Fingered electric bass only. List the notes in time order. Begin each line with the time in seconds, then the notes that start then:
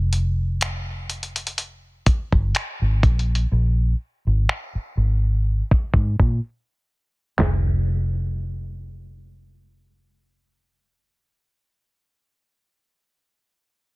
Already playing: F1
2.07 muted fingered electric bass stroke
2.33 G1
2.82 G#1
3.03 A#1
3.52 A#1
4.27 G#1
4.75 muted fingered electric bass stroke
4.97 G#1
5.94 G#2
6.20 A#2
7.39 F1